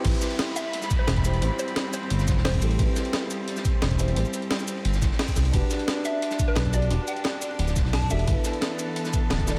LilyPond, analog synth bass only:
\new Staff \with { instrumentName = "Analog synth bass" } { \clef bass \time 4/4 \key e \minor \tempo 4 = 175 a,,16 r2 r8. e,,4 | a,,16 r4. r16 g,,8. e,,8. a,,8 | a,,16 r2 r8. e,,4 | a,,16 r4. r16 g,,8. r8. c,8 |
e,,16 r2 r8. b,,4 | e,,16 r4. r16 d,,8. b,,8. e,,8 | g,,16 r2 r8. d,,4 | }